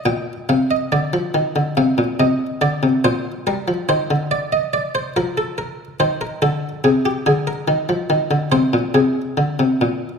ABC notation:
X:1
M:4/4
L:1/16
Q:1/4=71
K:Bbmix
V:1 name="Harpsichord"
g2 f e d4 f2 e2 d2 c2 | B2 c2 d e d c B =A B2 c B A2 | [K:Ablyd] A G A B4- B c2 A6 |]
V:2 name="Harpsichord" clef=bass
B,,2 C,2 D, F, E, D, C, B,, C,2 D, C, B,,2 | G, F, E, D,4- D, F,4 E,2 D,2 | [K:Ablyd] C,2 D,2 E, F, E, D, C, B,, C,2 D, C, B,,2 |]